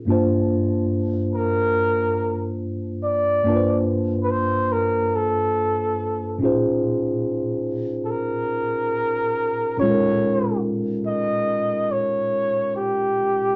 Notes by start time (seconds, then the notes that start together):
0.05 G2 A#3 D4 F4
0.10 C5 A5
1.35 A#4
3.04 D5
3.43 G2 A#3 D4 F4
3.48 B4 A5
3.56 C5
4.23 B4
4.30 C5
4.72 A#4
5.15 A4
6.38 A#2 C#4 D#4
6.43 F4 G#4 C5
8.04 A4
8.10 A#4
9.77 A#2 C#4 D#4 F4 C#5
9.82 G#3 A4
9.90 A#4
11.07 D#5
11.91 C#5
12.76 G4